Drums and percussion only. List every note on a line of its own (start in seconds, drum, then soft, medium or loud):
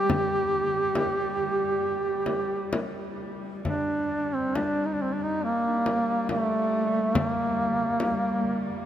0.10 frame drum medium
0.95 frame drum medium
2.26 frame drum soft
2.73 frame drum medium
3.65 frame drum soft
4.56 frame drum soft
5.86 frame drum soft
6.29 frame drum soft
7.15 frame drum medium
8.00 frame drum medium